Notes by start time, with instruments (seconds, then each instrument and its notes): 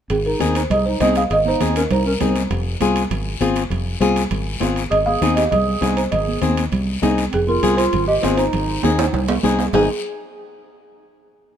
0.10 fingered electric bass G#1, clarinet C4, marimba G#4, high timbale, long guiro
0.25 clarinet D#4, marimba A#4
0.40 fingered electric bass D#2, nylon-string guitar C4 D#4 G#4, high conga, high timbale, short guiro
0.55 clarinet D#4, marimba C5, high timbale, short guiro
0.70 fingered electric bass C2, clarinet G#4, marimba D#5, low conga, high timbale, long guiro
0.86 clarinet D#4, marimba C5
1.00 fingered electric bass C2, nylon-string guitar C4 D#4 G#4, clarinet G#4, marimba D#5, high conga, high timbale, low timbale, short guiro
1.15 clarinet G#4, marimba F5, high timbale, short guiro
1.30 fingered electric bass G#1, clarinet G#4, marimba D#5, high timbale, long guiro
1.46 clarinet D#4, marimba C5, high conga
1.60 fingered electric bass D#2, nylon-string guitar C4 D#4 G#4, high conga, high timbale, short guiro
1.76 clarinet C#4, marimba A#4, high timbale, short guiro
1.90 fingered electric bass C2, clarinet D#4, marimba C5, low conga, high timbale, long guiro
2.06 clarinet C#4, marimba A#4
2.20 fingered electric bass C2, nylon-string guitar C4 D#4 G#4, clarinet D#4, marimba C5, high conga, low conga, high timbale, short guiro
2.36 high timbale, short guiro
2.50 fingered electric bass F1, low conga, high timbale, long guiro
2.80 fingered electric bass C2, nylon-string guitar C4 F4 G#4, high conga, high timbale, short guiro
2.96 high timbale, short guiro
3.11 fingered electric bass G#1, low conga, high timbale, long guiro
3.40 fingered electric bass G#1, nylon-string guitar C4 F4 G#4, high conga, high timbale, short guiro
3.56 high timbale, short guiro
3.70 fingered electric bass F1, low conga, high timbale, long guiro
4.00 fingered electric bass C2, nylon-string guitar C4 F4 G#4, high conga, high timbale, short guiro
4.16 high timbale, short guiro
4.31 fingered electric bass G#1, low conga, high timbale, long guiro
4.60 fingered electric bass G#1, nylon-string guitar C4 F4 G#4, high conga, high timbale, low timbale, short guiro
4.76 high timbale, short guiro
4.91 fingered electric bass G#1, clarinet G#4, marimba D#5, high timbale, long guiro
5.06 clarinet G#4, marimba F5, high conga
5.22 fingered electric bass D#2, nylon-string guitar C4 D#4 G#4, high conga, high timbale, short guiro
5.36 clarinet G4, marimba D#5, high timbale, short guiro
5.51 fingered electric bass C2, clarinet G#4, marimba D#5, low conga, high timbale, long guiro
5.81 fingered electric bass C2, nylon-string guitar C4 D#4 G#4, high conga, high timbale, low timbale, short guiro
5.96 clarinet D#4, marimba C5, high timbale, short guiro
6.11 fingered electric bass G#1, clarinet G#4, marimba D#5, low conga, high timbale, long guiro
6.28 high conga
6.42 fingered electric bass D#2, nylon-string guitar C4 D#4 G#4, high conga, high timbale, short guiro
6.57 high timbale, short guiro
6.72 fingered electric bass C2, low conga, high timbale, long guiro
7.02 fingered electric bass C2, nylon-string guitar C4 D#4 G#4, high conga, high timbale, low timbale, short guiro
7.18 high timbale, short guiro
7.32 fingered electric bass F1, clarinet C4, marimba G#4, high timbale, long guiro
7.48 clarinet F4, marimba A#4, high conga
7.63 fingered electric bass C2, nylon-string guitar C4 F4 G#4, high conga, high timbale, short guiro
7.77 clarinet F4, marimba C5, high timbale, short guiro
7.93 fingered electric bass G#1, low conga, high timbale, long guiro
8.07 clarinet G4, marimba D#5
8.22 fingered electric bass G#1, nylon-string guitar C4 F4 G#4, clarinet F4, marimba C5, high conga, high timbale, low timbale, short guiro
8.37 clarinet D#4, marimba C5, high timbale, short guiro
8.53 fingered electric bass G#1, low conga, high timbale, long guiro
8.83 fingered electric bass D#2, nylon-string guitar C4 D#4 G#4, high conga, high timbale, short guiro
8.99 high timbale, short guiro
9.13 fingered electric bass C2, low conga, high timbale, long guiro
9.28 low timbale
9.43 fingered electric bass C2, nylon-string guitar C4 D#4 G#4, high conga, low timbale, short guiro
9.59 low timbale, short guiro
9.73 fingered electric bass G#1, clarinet C4, nylon-string guitar C4 D#4 G#4, marimba G#4, low conga, low timbale, long guiro